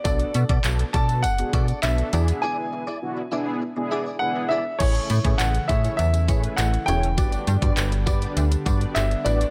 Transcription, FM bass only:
\new Staff \with { instrumentName = "FM bass" } { \clef bass \time 4/4 \key a \major \tempo 4 = 101 b,,8 b,16 b,16 b,,8 b,8 fis,,8 b,8 b,,8 e,8 | r1 | a,,8 a,16 a,16 a,,8 a,8 e,8 a,8 a,,8 e,,8 | g,,8 g,16 g,16 g,,8 g,8 d,8 g,8 g,,8 a,,8 | }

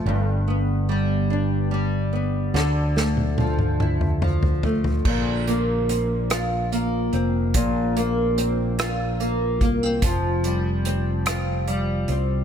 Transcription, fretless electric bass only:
\new Staff \with { instrumentName = "Fretless electric bass" } { \clef bass \time 6/8 \key d \dorian \tempo 4. = 48 g,,2. | d,2. | \key bes \lydian bes,,2~ bes,,8 f,,8 | bes,,2~ bes,,8 c,8 |
f,,2~ f,,8 c,8 | }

